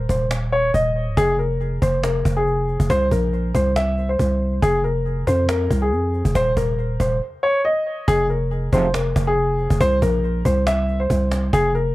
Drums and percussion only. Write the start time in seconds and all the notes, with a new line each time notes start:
0.09 cajon bass
0.31 cajon slap
0.74 cajon bass
1.17 cajon bass
1.39 cajon slap
1.61 cajon slap
1.82 cajon bass
2.03 cajon slap
2.25 cajon bass
2.47 cajon slap
2.68 cajon slap
2.80 cajon bass
2.90 cajon bass
3.11 cajon bass
3.33 cajon slap
3.55 cajon bass
3.76 cajon slap
3.98 cajon slap
4.19 cajon bass
4.63 cajon bass
4.84 cajon slap
5.06 cajon slap
5.27 cajon bass
5.49 cajon slap
5.71 cajon bass
5.92 cajon slap
6.14 cajon slap
6.25 cajon bass
6.35 cajon bass
6.57 cajon bass
6.79 cajon slap
7.00 cajon bass
8.08 cajon bass
8.29 cajon slap
8.51 cajon slap
8.73 cajon bass
8.94 cajon slap
9.16 cajon bass
9.38 cajon slap
9.59 cajon slap
9.70 cajon bass
9.80 cajon bass
10.02 cajon bass
10.24 cajon slap
10.45 cajon bass
10.67 cajon slap
10.88 cajon slap
11.10 cajon bass
11.31 cajon slap
11.53 cajon bass
11.75 cajon slap